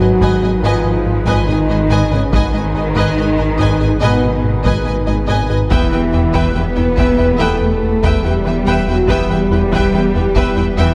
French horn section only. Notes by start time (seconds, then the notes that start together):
Already playing: F#4
0.63 F4
1.48 D#4
2.12 C#4
2.33 D#4
4.01 B3
5.71 E4
6.56 B4
7.40 A4
8.25 G4
8.90 F#4
9.09 G4
10.78 E4